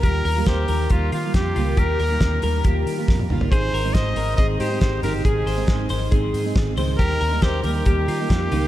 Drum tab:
HH |x-o-x-o-x-o-x-o-|x-o-x-o-x-o-----|x-o-x-o-x-o-x-o-|x-o-x-o-x-o-x-o-|
SD |----o-------o---|----o-------o---|----o-------o---|----o-------o---|
T1 |----------------|-------------o--|----------------|----------------|
T2 |----------------|--------------o-|----------------|----------------|
FT |----------------|---------------o|----------------|----------------|
BD |o---o---o---o---|o---o---o---o---|o---o---o---o---|o---o---o---o---|

HH |x-o-x-o-x-o-x-o-|
SD |----o-------o---|
T1 |----------------|
T2 |----------------|
FT |----------------|
BD |o---o---o---o---|